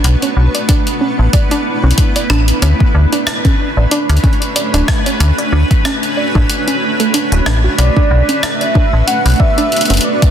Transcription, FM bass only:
X:1
M:4/4
L:1/16
Q:"Swing 16ths" 1/4=93
K:D
V:1 name="FM bass" clef=bass
B,,, z B,,, z4 A,,, z3 B,,, z2 A,,, z | D,, z D,, z4 A,,, z D,, z3 D,,, z2 | D,, z D,, z4 A,,, z4 z D,,, A,,, z | B,,, z B,,, z4 A,,, z B,,, z3 F,,, z2 |]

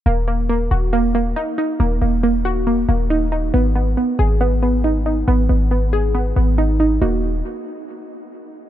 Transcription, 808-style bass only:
X:1
M:4/4
L:1/8
Q:1/4=138
K:Ebm
V:1 name="808-style bass" clef=bass
E,,,3 E,,,3 z2 | E,,, E,,,4 E,,,3 | A,,,2 z A,,,4- A,,, | A,,, A,,,4 A,,,3 |
E,,,2 z6 |]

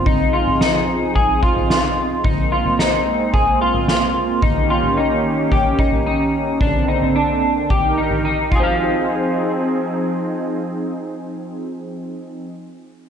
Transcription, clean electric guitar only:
X:1
M:4/4
L:1/8
Q:1/4=110
K:Fm
V:1 name="Clean electric guitar"
E F E2 A F F2 | E F E2 A F F2 | E F E2 G E E2 | =D E D2 G E E [FAcf]- |
[FAcf]8- | [FAcf]8 |]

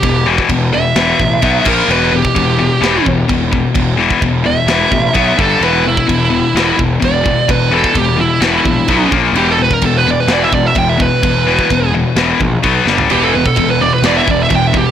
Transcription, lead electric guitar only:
X:1
M:4/4
L:1/16
Q:1/4=128
K:Em
V:1 name="Lead electric guitar"
G2 z4 e8 ^A2 | B2 G8 z6 | z6 e8 A2 | B2 E8 z2 d4 |
B2 A2 G2 E8 z2 | G A B ^A =A B d B d e d e g e B2- | B6 z8 z2 | G A B A A B d B d e d e g e G2 |]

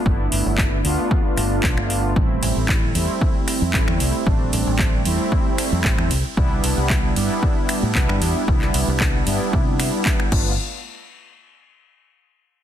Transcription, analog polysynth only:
X:1
M:4/4
L:1/8
Q:1/4=114
K:C
V:1 name="Analog polysynth"
[A,B,DE]3 [A,B,DF]4- [A,B,DF] | [G,A,CE]3 [G,A,CE]3 [G,A,CE]2 | [G,A,CD]3 [G,A,CE]4 z | [G,B,DE]3 [G,B,DE]3 [G,B,DE]2 |
[G,B,DE]3 [G,B,DE]4 [A,B,DF] | z8 |]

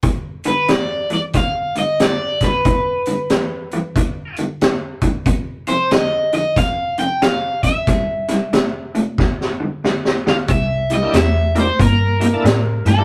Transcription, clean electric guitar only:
X:1
M:4/4
L:1/8
Q:"Swing" 1/4=92
K:Gdor
V:1 name="Clean electric guitar" clef=bass
[G,,D,] [G,,D,] [G,,E,] [G,,E,] [G,,D,] [G,,D,] [G,,D,] [G,,D,] | [G,,D,] [G,,D,] [G,,E,] [G,,E,] [G,,D,] [G,,D,] [G,,D,] [G,,D,] | [F,,C,] [F,,C,] [F,,D,] [F,,D,] [F,,C,] [F,,C,] [F,,C,] [F,,C,] | [C,G,] [C,G,] [C,A,] [C,A,] [G,,D,] [G,,D,] [G,,D,] [G,,D,] |
[C,G,] [C,G,] [C,A,] [C,A,] [C,B,] [C,B,] [C,A,] [C,A,] |]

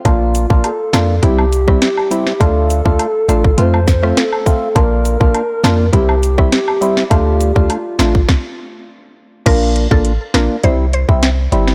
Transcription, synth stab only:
X:1
M:4/4
L:1/16
Q:1/4=102
K:Bblyd
V:1 name="Synth stab"
[B,DF]3 [B,DF] z2 [B,DF] z [G,CE] z2 [G,CE] z2 [G,CE] z | [A,DF]3 [A,DF] z2 [A,DF] z [A,CF] z2 [A,CF] z2 [A,CF] z | [B,DF]3 [B,DF] z2 [B,DF] z [G,CE] z2 [G,CE] z2 [G,CE] z | [A,DF]3 [A,DF] z2 [A,DF] z8 z |
[B,DF]3 [B,DF] z2 [B,DF] z [G,CE] z2 [G,CE] z2 [G,CE] z |]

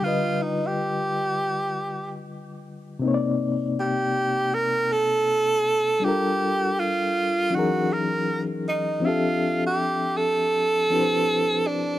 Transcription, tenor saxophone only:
X:1
M:4/4
L:1/16
Q:"Swing 16ths" 1/4=80
K:Cdor
V:1 name="Tenor saxophone"
F2 E G8 z4 z | z4 G4 B2 A6 | G4 F4 ^F2 ^A3 z ^D2 | F3 G3 A8 D2 |]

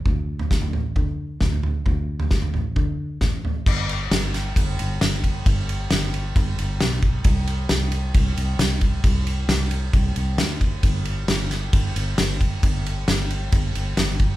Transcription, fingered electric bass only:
X:1
M:4/4
L:1/8
Q:1/4=134
K:Dmix
V:1 name="Fingered electric bass" clef=bass
D,,2 D,, A,,, D,2 D,,2 | D,,2 D,, A,,, D,2 A,,,2 | G,,,2 G,,,2 G,,, G,,, G,,,2 | G,,,2 G,,,2 G,,, G,,, B,,,2 |
C,,2 C,,2 C,, C,, C,,2 | C,,2 C,,2 C,, C,, D,,2 | G,,,2 G,,,2 G,,, G,,, G,,,2 | G,,,2 G,,,2 G,,, G,,, G,,,2 |]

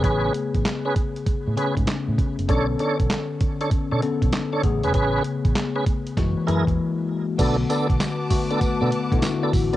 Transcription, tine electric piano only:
X:1
M:4/4
L:1/16
Q:"Swing 16ths" 1/4=98
K:Bdor
V:1 name="Tine electric piano"
[C,A,B,G]4- [C,A,B,G] z4 z [C,A,B,C]4- [C,A,B,C] z | [D,B,CA]6- [D,B,CA] z3 [D,B,CA]4 [C,A,B,G]2- | [C,A,B,G]4- [C,A,B,G] z3 [E,G,^A,F]2 [E,G,A,E]4- [E,G,A,E] z | [D,A,B,F]4- [D,A,B,F] z [D,A,B,F]4 z [D,A,B,EF]4 z |]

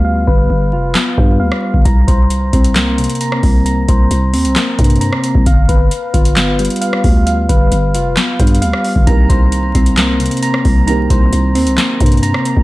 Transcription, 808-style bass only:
X:1
M:4/4
L:1/16
Q:1/4=133
K:Cm
V:1 name="808-style bass" clef=bass
D,,2 G,,,2 G,,,2 F,,,2 z2 G,,2 D,, z2 G,,, | C,,2 C,,4 C,,4- C,, z3 C,,2- | C,,2 C,,2 C,,2 E,, C,, z2 G,,3 z2 C,, | G,,,2 G,,,2 z2 G,,,4- G,,, z3 D,,2- |
D,,2 G,,,2 G,,,2 F,,,2 z2 G,,2 D,, z2 G,,, | C,,2 C,,4 C,,4- C,, z3 C,,2- | C,,2 C,,2 C,,2 E,, C,, z2 G,,3 z2 C,, |]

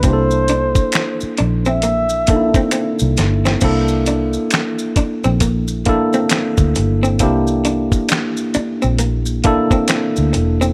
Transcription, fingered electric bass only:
X:1
M:4/4
L:1/16
Q:"Swing 16ths" 1/4=67
K:Cmix
V:1 name="Fingered electric bass" clef=bass
C,,4 z2 B,,,4- B,,, z2 C,, G,,,2 | C,,4 z3 B,,,4 z2 D,, G,,,2 | C,,4 z3 B,,,4 z2 D,, E,,,2 |]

